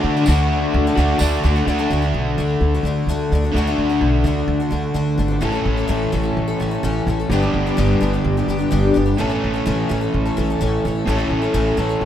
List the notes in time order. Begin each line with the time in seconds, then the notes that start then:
Already playing: D3 A3 D4 F#4 A4 D5
0.01 D3 A3 D4 F#4
0.17 A3 D4 F#4
0.26 D2 D3 A3 D4 F#4, tambourine
0.74 D2
0.87 A3 D4 F#4
0.96 D2 D3 A3 D4 F#4
1.00 F#4
1.19 D2 D3 A3 D4 F#4, tambourine
1.44 D2 D3 A3 D4 F#4
1.56 A3 D4 F#4
1.67 D2 D3 A3 D4 F#4
1.79 D3 A3 D4 F#4
1.90 D2 D3 A3 D4 F#4
2.02 A3 D4 F#4
2.14 B1
2.38 D2 D3 A3 D4 F#4
2.61 D2
2.75 A3 D4 F#4
2.83 D2 D3 A3 D4 F#4
3.07 D2 D3 A3 D4
3.11 F#4
3.32 D2 D3 A3 D4 F#4
3.44 A3 D4 F#4
3.52 D2 D3
3.56 D3 A3 D4 F#4
3.67 D3 A3 D4 F#4
3.78 D2
3.90 A3 D4 F#4
4.01 B1
4.24 D2 D3 A3 D4 F#4
4.48 D2
4.60 A3 D4 F#4
4.71 D2 D3 A3 D4 F#4
4.94 D2 D3 A3 D4 F#4
5.10 A3 B3
5.16 G#1 D3 A3 C4 D4 F#4
5.22 E4 F4
5.27 D4 F#4 G4 A4
5.32 A3 B4
5.36 C5 D5
5.41 A1 A2 E3 A3 C#4 E4 A4 C#5
5.52 A3 C#4 A4
5.65 A1
5.77 A3 C#4 A4
5.88 A1 A2 E3 A3 C#4 A4
6.12 A1 E3 A3 C#4 A4
6.23 A3 C#4 A4
6.37 A1
6.48 A3 C#4 A4
6.60 A1 E3 A3 C#4 A4
6.71 A3 C#4 A4
6.83 A1 A2 E3 A3 C#4 A4
7.07 A1 E3 A3 C#4 A4
7.20 A3 C#4 A4
7.29 G1 G2 D3 G3 B3 D4 G4 B4 D5
7.33 G4
7.42 G3 B3 D4 G4
7.54 G1
7.67 G3 B3 D4 G4
7.77 G1 G2 D3 G3 B3 D4 G4
8.01 G1 G3 B3 D4 G4
8.13 G3 B3 D4 G4
8.24 G1
8.37 G3 B3 D4 G4
8.48 G1 G3 B3 D4 G4
8.59 G3 B3 D4 G4
8.71 G1 G2 D3 G3 B3 D4 G4
8.94 G1 G3 B3 D4 G4
9.06 G3 B3 D4 G4
9.18 A1 A2 E3 A3 C#4 E4 A4 C#5
9.29 A3 C#4 A4
9.44 A1
9.54 A3 C#4 A4
9.66 A1 A2 E3 A3 C#4 A4
9.89 A1 E3 A3 C#4 A4
10.01 A3 C#4 A4
10.14 A1
10.26 A3 C#4 A4
10.37 A1 E3 A3 C#4 A4
10.50 A3 C#4 A4
10.61 A1 A2 E3 A3 C#4 A4
10.85 A1 E3 A3 C#4 A4
11.07 A1 A2 E3 A3 C#4 A4
11.18 A3 C#4 A4
11.30 A1
11.42 A3 C#4 A4
11.54 A1 A2 E3 A3 C#4 A4
11.77 A1 E3 A3 C#4 A4
11.89 A3 C#4 A4
12.01 A1